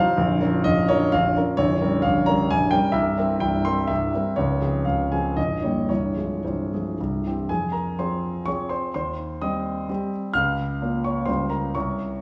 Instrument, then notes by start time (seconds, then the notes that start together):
grand piano
Already playing: F#3 D#4 C5 F5
0.17 A#0 A#1
0.40 F3 C#4 A#4
0.64 A#0 A#1 D#5
0.89 F3 C#4 A#4 C#5
1.12 A#0 A#1 F5
1.37 F3 C#4 A#4
1.57 A#0 A#1 C#5
1.81 G3 C#4 A#4
2.02 A#0 A#1 F5
2.26 G3 C#4 A#4 A#5
2.51 A#0 A#1 G#5
2.71 G3 C#4 A#4 G5
2.92 C1 C2 E5
3.18 G3 C4 A#4
3.40 C1 C2 G5
3.65 G3 C4 A#4 C6
3.87 C1 C2 E5
4.14 G3 C4 A#4
4.36 C#1 C#2 C#5
4.60 F3 C4 G#4
4.85 C#1 C#2 F5
5.12 F3 C4 G#4 G#5
5.37 A#0 A#1 D#5
5.62 G3 A#3 G4 C#5
5.89 C1 C2 C#5
6.17 F3 G#3 G#4
6.44 C1 C2 C5
6.73 F3 G#3 G#4
7.00 C1 C2
7.27 E3 C4 G4
7.49 F2 G#4 G#5
7.72 A#4 A#5
7.98 F3 C4 G#4 C5 C6
8.46 F3 C4 G#4 C#5 C#6
8.69 C5 C6
8.94 D#2 C5 C6
9.41 G3 C4 G4 D#5 D#6
9.89 G3 C4 G4
10.34 C#2 F5 F6
10.82 A#3 C#4 F4
11.04 C#5 C#6
11.25 C#2 G3 C#4 F4 C5 C6
11.50 A#4 A#5
11.75 C2 C#5 C#6